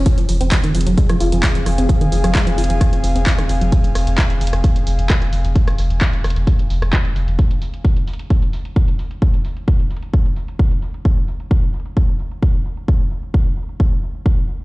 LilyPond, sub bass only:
\new Staff \with { instrumentName = "Sub bass" } { \clef bass \time 4/4 \key f \minor \tempo 4 = 131 r8 f,,16 f,,16 r16 f,,16 f,,16 f,,16 r8 f,,16 f,,16 r16 f,,16 f,,16 f,,16 | r8 f,,16 f,,16 r16 f,,16 f,,16 f,,16 r8 f,,16 f,,16 r16 f,,16 f,,16 f,,16 | r8 f,,16 f,,16 r16 f,,16 f,,16 f,,16 r8 f,,16 f,,16 r16 f,,16 f,,16 f,,16 | r8 f,,16 f,,16 r16 f,,16 f,,16 f,,16 r8 f,,16 f,,16 r16 f,,16 f,,16 f,,16 |
r1 | r1 | r1 | r1 | }